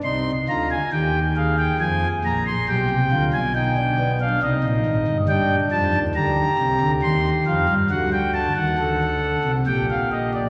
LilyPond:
<<
  \new Staff \with { instrumentName = "Pipe organ" } { \time 3/4 \key c \minor \tempo 4 = 69 << { c'''8 bes''16 aes''16 g''8 f''16 g''16 aes''8 bes''16 c'''16 | g''8. aes''16 g''8. f''16 ees''4 | g''8 a''8 bes''4 c'''8 f''8 | fis''16 g''16 a''16 fis''4~ fis''16 g''16 f''16 ees''16 d''16 | } \\ { ees'8 f'8 g'8 aes'4. | g'8 f'8 ees'16 d'16 b16 d'16 ees'4 | d'4 g'2 | fis'4 a'4 g'4 | } >> }
  \new Staff \with { instrumentName = "Pipe organ" } { \clef bass \time 3/4 \key c \minor <c, c>8 <d, d>8 <ees, ees>4 <f, f>8 <bes,, bes,>8 | <b,, b,>16 <c, c>16 <d, d>16 <b,, b,>4~ <b,, b,>16 <c, c>16 <bes,, bes,>16 <aes,, aes,>16 <g,, g,>16 | <g, g>8 <f, f>16 <ees, ees>16 <d, d>8 <c, c>16 <d, d>16 <ees, ees>8 <f, f>16 <g, g>16 | <d, d>8. <ees, ees>16 <d, d>8. <c, c>16 <bes,, bes,>4 | }
>>